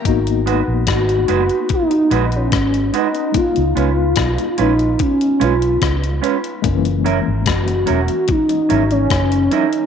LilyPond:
<<
  \new Staff \with { instrumentName = "Clean electric guitar" } { \time 4/4 \key gis \minor \tempo 4 = 73 r8 <gis dis' fis' b'>8 r8 <gis dis' fis' b'>8 r8 <gis dis' fis' b'>8 r8 <gis dis' fis' b'>8 | r8 <gis cis' eis' b'>8 r8 <gis cis' eis' b'>8 r8 <gis cis' eis' b'>8 r8 <gis cis' eis' b'>8 | r8 <fis cis' e' ais'>8 r8 <fis cis' e' ais'>8 r8 <fis cis' e' ais'>8 r8 <fis cis' e' ais'>8 | }
  \new Staff \with { instrumentName = "Soft synth lead" } { \time 4/4 \key gis \minor r4 fis'4 dis'8. cis'8. dis'8 | eis'8 eis'4 dis'8 cis'8 eis'4 r8 | r4 fis'4 dis'8. cis'8. dis'8 | }
  \new Staff \with { instrumentName = "Tine electric piano" } { \time 4/4 \key gis \minor <ais b dis' fis'>1 | <gis b dis' eis'>1 | <e gis ais cis' dis'>1 | }
  \new Staff \with { instrumentName = "Fingered electric bass" } { \clef bass \time 4/4 \key gis \minor gis,,8. ais,,16 gis,,8 fis,,16 r8. ais,,8 gis,,8 r8 | r16 cis,16 cis,8 b,,16 r16 ais,,8 r8 b,,8 cis,8 r8 | fis,,8. gis,,16 fis,,8 e,,16 r8. gis,,8 fis,,8 r8 | }
  \new DrumStaff \with { instrumentName = "Drums" } \drummode { \time 4/4 <hh bd>16 hh16 hh8 <hh bd ss>16 hh16 hh16 hh16 <hh bd>16 hh16 hh16 hh16 <hh bd ss>16 hh16 hh16 hh16 | <hh bd>16 hh16 hh8 <hh bd ss>16 hh16 hh16 hh16 <hh bd>16 hh16 hh16 hh16 <hh bd ss>16 hh16 hh16 hh16 | <hh bd>16 hh16 hh8 <hh bd ss>16 hh16 hh16 hh16 <hh bd>16 hh16 hh16 hh16 <hh bd ss>16 hh16 hh16 hh16 | }
>>